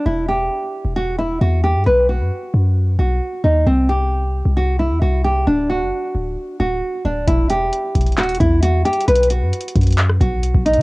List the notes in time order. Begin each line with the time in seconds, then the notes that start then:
0.06 E1 E4
0.28 G4
0.85 E1
0.96 F#4
1.18 E4
1.41 E2 F#4
1.64 G4
1.75 G2
1.86 B1 B4
2.09 F#4
2.20 F#2
2.54 F#2
2.99 B1 F#4
3.44 D#2 D#4
3.67 C2 C4
3.89 G4
4.46 C2
4.57 F#4
4.79 E4
4.91 E2
5.02 C2 F#4
5.25 G4
5.47 D1 D4
5.70 F#4
5.81 F#1
6.15 D1
6.60 D1 F#4
7.05 D1 D4
7.27 E1 E4, kick, closed hi-hat
7.50 G4, closed hi-hat
7.73 closed hi-hat
7.95 E1, kick, closed hi-hat
8.01 closed hi-hat
8.06 closed hi-hat
8.12 closed hi-hat
8.18 D1 F#4, clap, closed hi-hat
8.23 closed hi-hat
8.29 E1, closed hi-hat
8.35 closed hi-hat
8.40 E2 E4, kick, closed hi-hat
8.63 F#4, closed hi-hat
8.85 G4, closed hi-hat
8.93 closed hi-hat
9.01 closed hi-hat
9.08 B1 B4, closed hi-hat
9.16 closed hi-hat
9.23 closed hi-hat
9.30 F#4, closed hi-hat
9.42 F#2
9.53 closed hi-hat
9.61 closed hi-hat
9.68 closed hi-hat
9.76 F#2, kick, closed hi-hat
9.81 closed hi-hat
9.83 closed hi-hat
9.87 closed hi-hat
9.91 closed hi-hat
9.93 closed hi-hat
9.98 clap, closed hi-hat
10.10 cross-stick
10.21 B1 F#4, kick, closed hi-hat
10.43 closed hi-hat
10.55 B1, kick
10.66 D#4, closed hi-hat, open hi-hat
10.74 F#3, closed hi-hat